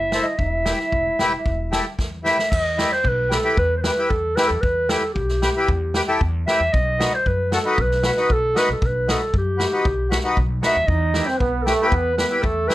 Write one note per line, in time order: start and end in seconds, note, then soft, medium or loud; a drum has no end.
0.00 0.17 F#1 medium
0.00 0.38 E4 medium
0.00 0.25 E5 loud
0.12 0.26 E4 medium
0.12 0.26 A4 medium
0.12 0.26 C5 medium
0.12 snare medium
0.23 0.40 D#5 medium
0.38 0.71 E1 medium
0.38 1.94 E4 medium
0.38 1.98 E5 medium
0.38 kick medium
0.65 0.79 E4 medium
0.65 0.79 G4 soft
0.65 0.79 B4 medium
0.65 snare medium
0.80 snare soft
0.92 1.08 E1 medium
0.92 kick medium
1.19 1.35 E1 medium
1.19 1.32 E4 medium
1.19 1.33 G4 medium
1.19 1.32 B4 loud
1.19 snare medium
1.46 1.78 E1 loud
1.46 kick medium
1.72 1.85 E4 medium
1.72 1.85 G4 medium
1.72 1.85 A4 medium
1.72 snare medium
1.98 2.30 E2 medium
1.98 kick medium
1.98 snare soft
2.24 2.38 E4 medium
2.24 2.38 G4 medium
2.24 2.38 B4 medium
2.24 2.52 E5 medium
2.24 snare medium
2.39 snare medium
2.50 2.83 E2 loud
2.50 2.94 D#5 loud
2.50 kick medium
2.50 crash medium
2.77 2.91 E4 medium
2.77 2.91 G4 medium
2.77 2.91 B4 medium
2.77 snare medium
2.92 3.09 C5 medium
2.92 snare soft
3.04 3.36 B1 loud
3.04 3.34 B4 medium
3.04 kick medium
3.30 3.37 G4 medium
3.30 3.58 A4 medium
3.30 3.38 B4 medium
3.30 snare medium
3.44 3.57 E4 medium
3.44 3.57 G4 medium
3.44 3.58 B4 medium
3.57 3.89 E2 loud
3.57 3.76 B4 loud
3.57 kick medium
3.77 3.83 C5 medium
3.81 4.11 B4 medium
3.81 snare loud
3.86 3.91 G4 medium
3.86 3.92 B4 medium
3.98 4.11 E4 medium
3.98 4.11 G4 medium
3.98 4.11 B4 medium
4.10 4.34 E2 medium
4.10 4.37 A4 medium
4.10 kick medium
4.36 4.50 E4 medium
4.36 4.50 G4 medium
4.36 4.49 B4 loud
4.36 4.50 B4 medium
4.36 snare medium
4.47 4.58 E2 loud
4.47 4.62 A4 medium
4.61 4.95 E2 loud
4.61 4.91 B4 medium
4.61 kick medium
4.89 5.03 E4 medium
4.89 5.03 G4 medium
4.89 5.13 A4 loud
4.89 5.03 B4 medium
4.89 snare medium
5.14 5.47 B1 loud
5.14 6.16 G4 medium
5.14 kick medium
5.29 snare soft
5.42 5.49 G4 medium
5.42 5.49 B4 medium
5.42 snare medium
5.57 5.69 E4 medium
5.57 5.69 G4 medium
5.57 5.69 B4 medium
5.68 6.00 E2 loud
5.68 kick medium
5.94 6.01 G4 medium
5.94 6.02 B4 loud
5.94 snare medium
6.08 6.21 E4 medium
6.08 6.21 G4 medium
6.08 6.21 A4 medium
6.21 6.44 E2 loud
6.21 kick medium
6.46 6.61 E4 medium
6.46 6.61 G4 medium
6.46 6.61 B4 medium
6.46 6.74 E5 loud
6.46 snare medium
6.60 6.68 E2 medium
6.72 7.05 B1 loud
6.72 7.16 D#5 loud
6.72 kick medium
6.99 7.12 D#4 medium
6.99 7.12 F#4 medium
6.99 7.12 B4 medium
6.99 snare loud
7.14 7.28 C5 medium
7.26 7.57 F#2 medium
7.26 7.52 B4 medium
7.26 kick medium
7.52 7.59 F#4 medium
7.52 7.59 A4 medium
7.52 7.82 A4 medium
7.52 snare medium
7.66 7.78 D#4 medium
7.66 7.78 F#4 medium
7.66 7.78 B4 medium
7.78 8.09 B1 loud
7.78 8.05 B4 loud
7.78 kick medium
7.91 snare soft
8.03 8.11 F#4 medium
8.03 8.11 B4 medium
8.03 snare loud
8.08 8.33 B4 medium
8.17 8.30 D#4 medium
8.17 8.30 F#4 medium
8.17 8.30 B4 medium
8.17 snare soft
8.29 8.53 B1 medium
8.29 8.59 A4 loud
8.29 kick medium
8.55 8.69 D#4 medium
8.55 8.69 F#4 medium
8.55 8.69 B4 loud
8.55 8.70 B4 loud
8.55 snare medium
8.69 8.77 B1 loud
8.69 8.87 A4 medium
8.82 9.13 B1 loud
8.82 kick medium
8.86 9.13 B4 medium
9.08 9.21 D#4 medium
9.08 9.21 F#4 medium
9.08 9.36 A4 medium
9.08 9.21 B4 medium
9.08 snare loud
9.33 9.65 F#2 medium
9.33 kick medium
9.38 10.36 G4 medium
9.58 9.65 F#4 medium
9.58 9.66 B4 medium
9.58 snare medium
9.72 9.86 D#4 medium
9.72 9.86 F#4 medium
9.72 9.86 B4 medium
9.85 10.16 B1 loud
9.85 kick medium
10.10 10.18 F#4 medium
10.10 10.18 B4 medium
10.10 snare loud
10.24 10.38 D#4 medium
10.24 10.37 F#4 medium
10.24 10.38 B4 medium
10.37 10.60 B1 loud
10.37 kick medium
10.63 10.76 D#4 medium
10.63 10.76 F#4 medium
10.63 10.77 B4 medium
10.63 10.88 E5 loud
10.63 snare medium
10.76 10.84 D#2 medium
10.87 11.20 E2 loud
10.87 11.29 D#4 medium
10.87 11.28 D#5 loud
10.87 kick medium
11.14 11.28 E4 medium
11.14 11.28 G4 medium
11.14 11.28 B4 medium
11.14 snare medium
11.26 11.39 C4 medium
11.26 11.39 C5 medium
11.26 snare soft
11.37 11.72 B1 medium
11.37 11.68 B3 medium
11.37 11.64 B4 medium
11.37 kick medium
11.62 11.73 G4 medium
11.62 11.88 A4 loud
11.67 11.92 A3 loud
11.67 11.74 B4 loud
11.67 snare medium
11.82 11.94 E4 medium
11.82 11.94 G4 medium
11.82 11.94 B4 medium
11.87 12.15 B3 loud
11.87 11.93 C5 medium
11.91 12.23 E2 medium
11.91 12.17 B4 loud
11.91 kick loud
12.16 12.41 B3 medium
12.16 12.25 G4 medium
12.16 12.43 B4 medium
12.16 12.26 B4 medium
12.16 snare medium
12.31 12.44 E4 medium
12.31 12.44 G4 medium
12.31 12.45 B4 medium
12.42 12.67 E2 loud
12.42 12.75 A3 medium
12.42 12.69 A4 loud
12.42 kick medium
12.67 12.75 E4 medium
12.67 12.75 G4 medium
12.67 12.75 B4 medium
12.67 snare medium